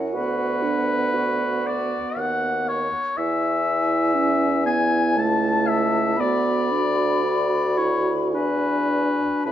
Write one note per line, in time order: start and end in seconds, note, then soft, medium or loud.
0.00 0.17 F#2 soft
0.00 0.11 C#4 soft
0.00 0.15 E4 soft
0.00 2.91 F#5 soft
0.13 2.00 D2 soft
0.13 2.87 B3 soft
0.13 0.64 F#4 soft
0.13 1.68 B4 medium
0.62 1.16 D4 soft
1.14 2.90 F#4 medium
1.66 2.20 D5 medium
2.17 2.89 D#2 soft
2.17 2.70 F#5 medium
2.69 3.19 C#5 medium
3.17 5.18 E2 soft
3.17 4.16 E4 medium
3.17 6.16 E4 soft
3.17 4.66 E5 medium
3.17 5.17 G#5 soft
4.14 4.67 C#4 soft
4.66 5.18 B3 soft
4.66 5.20 G#5 medium
5.16 6.19 C#2 soft
5.16 6.18 A3 soft
5.16 6.18 A5 soft
5.16 5.69 A5 medium
5.68 6.22 E5 medium
6.17 8.36 D2 soft
6.17 6.73 B3 soft
6.17 8.36 F#4 soft
6.17 7.79 D5 medium
6.17 8.32 B5 soft
6.71 7.25 D4 soft
7.24 7.79 F#4 soft
7.77 8.35 E4 soft
7.77 8.14 C#5 medium
8.33 9.30 E2 soft
8.33 9.48 D4 soft
8.33 9.45 F#4 soft
8.33 9.43 B4 medium
8.33 9.46 G#5 soft
9.44 9.52 A2 soft
9.44 9.52 C#4 soft
9.44 9.52 E4 soft
9.44 9.52 B4 medium
9.44 9.52 A5 soft